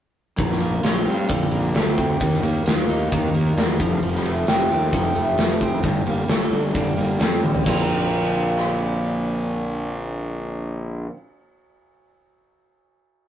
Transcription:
0.37 A#1 A#2, kick, open hi-hat
0.51 snare
0.60 A#3, open hi-hat
0.83 A#1 F4, snare, open hi-hat
1.06 G2 C4, open hi-hat
1.29 A#1 D3, kick, open hi-hat
1.51 A#1 A#3, open hi-hat
1.74 D2 D3, snare, open hi-hat
1.98 C4, kick, open hi-hat
2.20 D#2 D#3, kick, open hi-hat
2.34 snare
2.42 D#2 A#3, open hi-hat
2.66 D#2 F4, snare, open hi-hat
2.80 snare
2.88 D#2 D#4, open hi-hat
3.12 D#2 D#3, kick, open hi-hat
3.34 D#2 A#3, open hi-hat
3.57 E2 D#3, snare, open hi-hat
3.80 F1 F3, kick, open hi-hat
4.03 F1 F3, open hi-hat
4.15 snare
4.25 A3, open hi-hat
4.47 F1 G4, snare, open hi-hat
4.70 D#2 C4, open hi-hat
4.93 F1 F3, kick, open hi-hat
5.15 F1 A3, open hi-hat
5.38 F1 F3, snare, open hi-hat
5.60 C4, kick, open hi-hat
5.83 G1 G2, kick, open hi-hat
6.06 G1 A#3, open hi-hat
6.28 G1 A4, snare, open hi-hat
6.51 G1 D4, open hi-hat
6.74 G1 G3, kick, open hi-hat
6.97 G1 A#3, open hi-hat
7.20 F2 G3, snare, open hi-hat
7.43 A1 D4, high tom
7.54 floor tom
7.64 A#1 A#2 D3 A#3 C4, kick, crash
7.69 F4
8.58 cross-stick

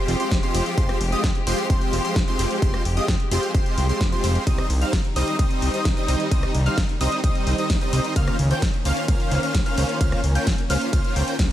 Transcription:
Already playing: F3 G#3 C4 F4 G4 C5 C6
0.08 F1, open hi-hat
0.20 G#3 C4 F4 G4 C5 C6, closed hi-hat
0.31 F1, kick, snare, closed hi-hat
0.43 G#3 C4 F4 G4 C5 C6, closed hi-hat
0.55 F1, open hi-hat
0.66 closed hi-hat
0.78 F1 G#3 C4 F4 G4 C5 C6, kick, closed hi-hat
0.89 cross-stick, closed hi-hat
1.01 F1, open hi-hat
1.12 G#3 C4 F4 G4 D#5 D#6, closed hi-hat
1.24 F2, kick, snare, closed hi-hat
1.35 closed hi-hat
1.47 F1 G#3 C4 F4 G4 C5 C6, open hi-hat
1.58 closed hi-hat
1.70 F1 G#3 C4 F4 G4 C5 C6, kick, closed hi-hat
1.82 closed hi-hat
1.93 F1, open hi-hat
2.05 G#3 C4 F4 G4 C5 C6, closed hi-hat
2.16 F1, kick, snare, closed hi-hat
2.28 G#3 C4 F4 G4 C5 C6, closed hi-hat
2.39 F1, open hi-hat
2.51 closed hi-hat
2.62 F1 G#3 C4 F4 G4 C5 C6, kick, closed hi-hat
2.74 cross-stick, closed hi-hat
2.85 F1, open hi-hat
2.97 G#3 C4 F4 G4 D#5 D#6, closed hi-hat
3.08 F2, kick, snare, closed hi-hat
3.20 closed hi-hat
3.31 F1 G#3 C4 F4 G4 C5 C6, open hi-hat
3.43 closed hi-hat
3.55 F1 G#3 C4 F4 G4 C5 C6, kick, closed hi-hat
3.66 closed hi-hat
3.78 C2, open hi-hat
3.89 G#3 C4 F4 G4 C5 C6, closed hi-hat
4.01 F2, kick, snare, closed hi-hat
4.12 G#3 C4 F4 G4 C5 C6, closed hi-hat
4.24 F1, open hi-hat
4.35 closed hi-hat
4.47 C2 D#3 G3 C4 D#4 C5 D#5 D#6, kick, closed hi-hat, ride
4.58 cross-stick, closed hi-hat
4.70 C2, open hi-hat
4.81 G3 C4 D#4 C5 F5 F6, closed hi-hat
4.93 G1, kick, snare, closed hi-hat, ride
5.05 closed hi-hat
5.16 C2 G3 C4 D#4 C5 D#5 D#6, open hi-hat
5.28 closed hi-hat
5.39 C2 G3 C4 D#4 C5 D#5 D#6, kick, closed hi-hat, ride
5.51 closed hi-hat
5.62 C2, open hi-hat
5.74 G3 C4 D#4 C5 D#5 D#6, closed hi-hat
5.85 C2, kick, snare, closed hi-hat, ride
5.97 G3 C4 D#4 C5 D#5 D#6, closed hi-hat
6.08 C2, open hi-hat
6.20 closed hi-hat
6.31 C2 G3 C4 D#4 C5 D#5 D#6, kick, closed hi-hat, ride
6.43 cross-stick, closed hi-hat
6.55 C2, open hi-hat
6.66 G3 C4 D#4 C5 F5 F6, closed hi-hat
6.78 G1, kick, snare, closed hi-hat, ride
6.89 closed hi-hat
7.01 C2 G3 C4 D#4 C5 D#5 D#6, open hi-hat
7.12 closed hi-hat
7.24 C2 G3 C4 D#4 C5 D#5 D#6, kick, closed hi-hat, ride
7.35 closed hi-hat
7.47 C2, open hi-hat
7.58 G3 C4 D#4 C5 D#5 D#6, closed hi-hat
7.70 C2, kick, snare, closed hi-hat, ride
7.81 G3 C4 D#4 C5 D#5 D#6, closed hi-hat
7.93 C2, open hi-hat
8.05 closed hi-hat
8.16 C#2 A#3 C#4 F4 C5 F5 F6, kick, closed hi-hat, ride
8.28 cross-stick, closed hi-hat
8.39 C#2, open hi-hat
8.51 A#3 C#4 F4 C5 G5 G6, closed hi-hat
8.62 G#1, kick, snare, closed hi-hat, ride
8.74 closed hi-hat
8.85 C#2 A#3 C#4 F4 C5 F5 F6, open hi-hat
8.97 closed hi-hat
9.08 C#2 A#3 C#4 F4 C5 F5 F6, kick, closed hi-hat, ride
9.20 closed hi-hat
9.31 C#2, open hi-hat
9.43 A#3 C#4 F4 C5 F5 F6, closed hi-hat
9.55 C#2, kick, snare, closed hi-hat, ride
9.66 A#3 C#4 F4 C5 F5 F6, closed hi-hat
9.78 C#2, open hi-hat
9.89 closed hi-hat
10.01 C#2 A#3 C#4 F4 C5 F5 F6, kick, closed hi-hat, ride
10.12 cross-stick, closed hi-hat
10.24 C#2, open hi-hat
10.35 A#3 C#4 F4 C5 G5 G6, closed hi-hat
10.47 G#1, kick, snare, closed hi-hat, ride
10.58 closed hi-hat
10.70 C#2 A#3 C#4 F4 C5 F5 F6, open hi-hat
10.81 closed hi-hat
10.93 C#2 A#3 C#4 F4 C5 F5 F6, kick, closed hi-hat, ride
11.05 closed hi-hat
11.16 C#2 A#3 C#4 F4 C5 G5 G6, open hi-hat
11.28 closed hi-hat
11.39 C#2, kick, snare, closed hi-hat, ride

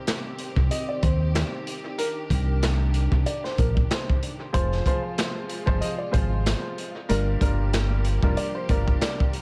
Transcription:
Already playing: D#3 C4 G4 C5
0.07 snare, clap, closed hi-hat
0.39 closed hi-hat
0.56 C2, kick
0.71 D#5, closed hi-hat
0.89 D5
1.03 D#2 C5, kick, closed hi-hat
1.35 snare, clap, closed hi-hat
1.67 closed hi-hat
1.98 D4 A#4, closed hi-hat
2.30 C2, kick, closed hi-hat
2.63 snare, clap, closed hi-hat
2.94 closed hi-hat
3.12 C2, kick
3.26 D5, closed hi-hat
3.44 C5, snare
3.58 A#1 A#4, kick, closed hi-hat
3.77 kick
3.91 C5, snare, clap, closed hi-hat
4.10 kick
4.23 closed hi-hat
4.53 F1 C3 F3 G#3 F4 G#4 C5, kick, closed hi-hat
4.72 snare
4.86 F3 F4 G#4 C5, kick, closed hi-hat
5.18 snare, clap, closed hi-hat
5.49 closed hi-hat
5.66 G1 F3 F4 G#4 C5, kick
5.81 D#5, closed hi-hat
5.98 D5
6.11 G#1 F3 F4 G#4 C5, kick, closed hi-hat
6.46 snare, clap, closed hi-hat
6.78 closed hi-hat
7.09 G1 F3 G3 A#3 D4 F4 G4 A#4, closed hi-hat
7.41 G1 G3 D4 F4 A#4, kick, closed hi-hat
7.73 snare, clap, closed hi-hat
8.05 closed hi-hat
8.23 F1 G3 D4 F4 A#4, kick
8.37 D5, closed hi-hat
8.55 C5
8.69 G1 G3 D4 F4 A#4, kick, closed hi-hat
8.88 kick
9.01 D5, snare, clap, closed hi-hat
9.20 kick
9.33 closed hi-hat

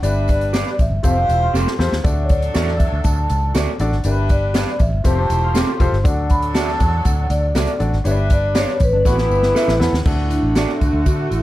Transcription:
0.02 G1 G3 D4 G4 B4 D5 E5, closed hi-hat, tambourine
0.28 D5, kick, closed hi-hat, tambourine
0.41 closed hi-hat
0.53 G4 B4 D5, snare, closed hi-hat, tambourine
0.67 snare
0.79 A1 E5, kick, closed hi-hat, tambourine
0.91 G1
1.03 F1 A3 C4 F4 G4 A4 C5 F5, kick, closed hi-hat, tambourine
1.17 D4
1.29 E1 E4, closed hi-hat, tambourine
1.43 F4
1.54 F1 C4 G4 A4, snare, tambourine
1.67 snare
1.79 E2 F4 G4 A4 C5, snare, tambourine
1.92 D#2, snare
2.04 D2 F#3 D4 F#4 A4 D5 E5, kick, closed hi-hat, tambourine
2.24 C#5
2.29 D5, kick, closed hi-hat, tambourine
2.42 closed hi-hat
2.54 E2 F#4 A4 D5, snare, closed hi-hat, tambourine
2.68 snare
2.78 E5, kick, closed hi-hat, tambourine
2.92 D2
3.04 D2 A5, kick, closed hi-hat, tambourine
3.30 C#2, closed hi-hat, tambourine
3.54 D2 F#4 A4 D5, snare, closed hi-hat, tambourine
3.79 A1 D4 F#4 A4 D5, closed hi-hat, tambourine
3.92 G#1, snare
4.04 G1 G3 D4 G4 A#4 B4 D5 E5, closed hi-hat, tambourine
4.11 B4
4.29 D5, kick, closed hi-hat, tambourine
4.54 G4 B4 D5, snare, closed hi-hat, tambourine
4.67 snare
4.79 A1 E5, kick, closed hi-hat, tambourine
4.92 G1
5.04 F1 A3 C4 F4 G4 A4 C5 A5, kick, closed hi-hat, tambourine
5.18 D4
5.30 E1 E4, closed hi-hat, tambourine
5.44 F4
5.54 C4 G4 A4, snare, closed hi-hat, tambourine
5.80 F1 F4 G4 A4 C5, kick, closed hi-hat, tambourine
5.92 G1, snare
6.04 D2 F#3 D4 F#4 A4 D5 F#5, kick, closed hi-hat, tambourine
6.30 B5, kick, closed hi-hat, tambourine
6.42 closed hi-hat
6.54 F#4 A4 D5 A5, snare, closed hi-hat, tambourine
6.68 snare
6.80 E2, kick, closed hi-hat, tambourine
7.04 D2 F#5, kick, closed hi-hat, tambourine
7.30 D2 D5, closed hi-hat, tambourine
7.55 C#2 F#4 A4 D5, snare, closed hi-hat, tambourine
7.67 closed hi-hat
7.79 A1 D4 F#4 A4 D5, closed hi-hat, tambourine
7.93 G#1, snare
8.04 G1 G3 D4 G4 B4 C#5 E5, closed hi-hat, tambourine
8.11 D5
8.30 D5, kick, closed hi-hat, tambourine
8.55 G4 B4 C#5 D5, snare, closed hi-hat, tambourine
8.68 snare
8.80 A1 B4, kick, closed hi-hat, tambourine
8.93 G1 D4
9.05 A1 E3 B3 E4 F#4 G4 A4 B4, kick, snare, tambourine
9.18 E4, snare
9.30 G1, tambourine
9.43 snare
9.55 A4 B4 E5, snare, tambourine
9.68 A1, snare
9.79 E2 B3 E4 A4 B4, snare, tambourine
9.93 D#2, snare
10.05 D2 D3 A3 D4 F#4 A4, kick, crash, tambourine
10.25 E4
10.31 D4, closed hi-hat, tambourine
10.43 A1
10.55 F#4 A4 D5, snare, closed hi-hat, tambourine
10.69 snare
10.81 D2, kick, closed hi-hat, tambourine
10.93 D2
11.06 D3 F#4, kick, closed hi-hat, tambourine
11.30 A1 E4, closed hi-hat, tambourine

